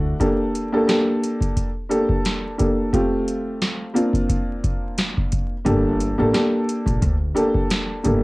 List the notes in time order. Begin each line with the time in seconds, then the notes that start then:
Already playing: D2 A3 D4 E4 F#4
0.20 A#3 D4 G4 A4, kick, closed hi-hat
0.55 closed hi-hat
0.72 A#3 D4 G4 A4
0.87 A#3 D4 G4 A4, snare, closed hi-hat
1.23 closed hi-hat
1.41 kick, closed hi-hat
1.57 kick, closed hi-hat
1.89 A#3 D4 G4 A4, closed hi-hat
2.09 kick
2.25 snare, closed hi-hat
2.58 A#3 D4 G4 A4, kick, closed hi-hat
2.93 A3 C4 F4 G4, kick, closed hi-hat
3.28 closed hi-hat
3.62 snare, closed hi-hat
3.94 A#3 C4 D4 F4, closed hi-hat
4.13 kick, closed hi-hat
4.29 kick, closed hi-hat
4.64 kick, closed hi-hat
4.98 snare, closed hi-hat
5.17 kick
5.32 kick, closed hi-hat
5.65 G1 A#3 D4 G4 A4, kick, closed hi-hat
6.00 closed hi-hat
6.18 A1 A#3 D4 G4 A4
6.33 A#3 D4 G4 A4, snare, closed hi-hat
6.69 closed hi-hat
6.86 A#1, kick, closed hi-hat
7.02 D2, kick, closed hi-hat
7.34 A#3 D4 G4 A4, closed hi-hat
7.54 kick
7.70 snare, closed hi-hat
8.03 G1 A#3 D4 G4 A4, kick, closed hi-hat